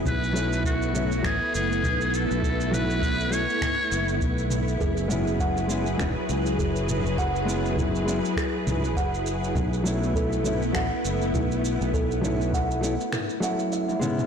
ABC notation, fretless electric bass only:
X:1
M:4/4
L:1/16
Q:"Swing 16ths" 1/4=101
K:B
V:1 name="Fretless electric bass" clef=bass
B,,,8 =A,,, z F,,,2 B,,,3 B,,,- | B,,,6- B,,, z3 F,,,2 B,,,4 | F,,,8 E,,, z C,,2 F,,,3 F,,,- | F,,,6- F,,, z3 C,,2 F,,,4 |
B,,,8 =A,,, z F,,,2 B,,,3 B,,,- | B,,,6- B,,, z8 z |]